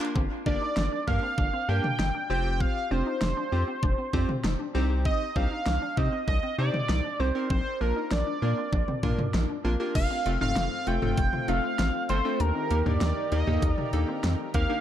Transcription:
Already playing: F5
0.00 A#3 D4 F4 A#4, clap
0.16 G1 C4, kick
0.46 G1 A#3 D4 G4 A#4 D5, kick
0.61 D#4
0.77 G1 D4, snare
0.92 D4
1.07 G2 A#3 D4 G4 A#4 F5, kick
1.23 C4
1.38 G1 D4, kick
1.53 C4
1.69 G2 A#3 D4 G4 A#4 G5
1.84 mid tom
1.99 G1 D#4, snare
2.15 D4
2.30 F1 C4 F4 G4 C5 G5
2.45 G4
2.60 C4 F5, kick
2.91 F1 C4 D4 F4 G4 C5
3.06 D#4
3.21 F1 D4, snare
3.37 D4
3.52 F2 C4 F4 G4 C5
3.68 C4
3.83 F1 D4, kick
3.98 C4
4.13 F2 C4 D4 F4 G4 C5, kick
4.29 mid tom
4.44 F1 D#4, snare
4.59 D4
4.75 C2 C4 D#4 G4 C5
4.90 G4
5.05 C4 D#5, kick
5.36 C2 C4 D4 D#4 G4 C5 F5, kick
5.51 D#4
5.66 C2 D4, snare
5.82 D4
5.97 C3 C4 D#4 G4 C5 D#5, kick
6.12 C4
6.28 C2 D4 D#5, kick
6.43 C4
6.58 C3 C4 D4 D#4 G4 C5 D5
6.74 mid tom
6.89 C2 D#4, snare
7.04 D4
7.20 C2 C4 D#4 G4 C5
7.35 C4 D#4 G4 A#4
7.50 A#1 C4 C5, kick
7.81 A#1 A#3 D4 F4 A#4
7.96 D#4
8.11 A#1 D4 D5, snare
8.27 D4
8.42 A#2 A#3 D4 F4 A#4
8.57 C4
8.73 A#1 D4, kick
8.88 C4, mid tom
9.03 A#2 A#3 D4 F4 A#4, kick, mid tom
9.19 mid tom
9.34 A#1 D#4, snare
9.49 D4
9.65 A#1 A#3 C4 D4 F4 A#4
9.80 A#3 D4 F4 G4 A#4
9.95 F1 A3 C4 D4 F4 F5, kick, closed hi-hat, crash
10.11 C4
10.26 F1 A3 C4 F4 A4, closed hi-hat
10.41 F1 A3 C4 D#4 F4 A4 F5, mid tom
10.56 F1 F4, snare, closed hi-hat
10.87 F1 A3 C4 F4 A4 G5, closed hi-hat
11.02 F1 A3 C4 F4 A4, mid tom
11.17 F1 F4, kick, closed hi-hat
11.33 F4, mid tom
11.48 F1 A3 C4 D#4 F4 A4 F5, closed hi-hat
11.64 C4
11.79 A1 C4, snare, closed hi-hat
12.09 G1 A3 C4 F4 A4 C5, closed hi-hat
12.25 A3 C4 D4 F4 A4
12.40 D#2 D#3 D4 D#4 G4 A#4, closed hi-hat
12.55 C4
12.71 D#2 A#3 D#4 G4 A#4, closed hi-hat
12.86 D#2 A#3 D4 D#4 G4 A#4 D5, mid tom
13.01 D#2 D#4, snare, closed hi-hat
13.32 D#2 A#3 D#4 G4 A#4 D#5, closed hi-hat
13.47 D#2 A#3 D#4 G4 A4, mid tom
13.62 D#2 D#4, kick, closed hi-hat
13.73 D5
13.78 D#4, mid tom
13.93 D#2 A#3 D4 D#4 G4 A4, closed hi-hat
14.08 C4
14.24 F2 C4, snare, closed hi-hat
14.54 D#2 A#3 C4 D#4 G4 A#4 F5, kick, closed hi-hat
14.70 A#3 D4 D#4 G4 A#4

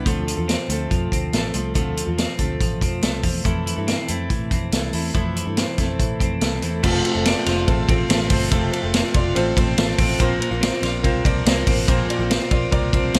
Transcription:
Already playing: D4
0.05 D2 D3 F3 A3 C4 F4 A4, kick, closed hi-hat
0.27 F3, closed hi-hat
0.37 E2 C4 F4 A4
0.48 C4, snare, closed hi-hat
0.68 D2 A3 C4 F4 A4, closed hi-hat
0.90 F2 F3, kick, closed hi-hat
1.12 D2 C4, kick, closed hi-hat
1.33 A1 A3 C4 F4 A4, snare, closed hi-hat
1.54 C2 F3 A3 C4 F4 A4, closed hi-hat
1.74 D2 D3 F3 A3 C4 F4 A4, kick, closed hi-hat
1.97 F3, closed hi-hat
2.06 E2 C4 F4 A4
2.18 C4, snare, closed hi-hat
2.38 D2 A3 C4 F4 A4, kick, closed hi-hat
2.60 A1 F3, kick, closed hi-hat
2.81 F2 C4, kick, closed hi-hat
3.01 C2 A3 C4 F4 A4, snare, closed hi-hat
3.23 E2 F3 A3 C4 F4 A4, kick, open hi-hat
3.44 F2 E3 F3 A3 C4 E4 A4, kick, closed hi-hat
3.66 E3, closed hi-hat
3.76 G2 C4 E4 A4
3.87 C4, snare, closed hi-hat
4.08 F2 A3 C4 E4 A4, closed hi-hat
4.29 A2 E3, kick, closed hi-hat
4.51 F2 C4, kick, closed hi-hat
4.71 C2 A3 C4 E4 A4, snare, closed hi-hat
4.93 E2 E3 A3 C4 E4 A4, open hi-hat
5.14 F2 E3 F3 A3 C4 E4 A4, kick, closed hi-hat
5.36 E3, closed hi-hat
5.45 G2 C4 E4 A4
5.57 C4, snare, closed hi-hat
5.78 F2 A3 C4 E4 A4, kick, snare, closed hi-hat
5.99 A2 E3, kick, closed hi-hat
6.20 F2 C4, kick, closed hi-hat
6.41 C2 A3 C4 E4 A4, snare, closed hi-hat
6.62 E2 E3 A3 C4 E4 A4, closed hi-hat
6.83 F1 F2 C3 F3 A3 C4 F4 A4 C5, kick, crash
7.04 A3 C4 F4 A4 C5, ride
7.15 F1 F3 A3 C4 F4
7.25 C4 F4 A4 D5, snare, ride
7.36 F3 A3 C4 F4
7.46 F1 C4 F4 A4 C5, snare, ride
7.67 A1 A3 C4 F4 A4 C5, kick, ride
7.88 A1 F3 A3 C4 F4 A4 C5, kick, ride
8.08 A1 F3 A3 C4 F4 A4 C5, snare, ride
8.30 G1 F3 A3 C4 F4 A4 C5, kick, open hi-hat, ride
8.51 F1 F2 C3 F3 A3 C4 F4 A4 C5, kick, hi-hat pedal, ride
8.72 A3 C4 F4 A4 C5, ride
8.82 F1 F3 A3 C4 F4
8.93 C4 F4 A4 C5, snare, ride
9.04 F3 A3 C4 F4
9.14 F1 C4 F4 A4 D5, kick, ride
9.35 A1 A3 C4 F4 A4 C5, ride
9.56 A1 F3 A3 C4 F4 A4 C5, kick, ride
9.77 A1 F3 A3 C4 F4 A4 C5, snare, ride
9.98 A1 F3 A3 C4 F4 A4 C5, kick, open hi-hat, ride
10.19 A#1 A#2 F3 A#3 C4 F4 A#4 C5, kick, hi-hat pedal, ride
10.40 A#3 C4 F4 A#4 C5, ride
10.51 A#1 A#3 C4 F4
10.61 C4 F4 A#4 C5, snare, ride
10.72 A#3 C4 F4
10.82 A#1 C4 F4 A#4 D5, snare, ride
11.03 C2 A#3 C4 F4 A#4 C5, kick, ride
11.24 C2 F3 A#3 C4 F4 A#4 D5, kick, ride
11.45 C2 F3 A#3 C4 F4 A#4 C5, snare, ride
11.66 A1 F3 A#3 C4 F4 A#4 C5, kick, open hi-hat, ride
11.87 A#1 A#2 F3 A#3 C4 F4 A#4 C5, kick, hi-hat pedal, ride
12.08 A#3 C4 F4 A#4 D5, ride
12.19 A#1 A#3 C4 F4
12.30 C4 F4 A#4 C5, snare, ride
12.40 A#3 C4 F4
12.50 A#1 C4 F4 A#4 D5, kick, ride
12.71 C2 A#3 C4 F4 A#4 D5, kick, ride
12.92 C2 F3 A#3 C4 F4 A#4 C5, kick, ride
13.14 C2 F3 A#3 C4 F4 A#4 C5, snare, ride

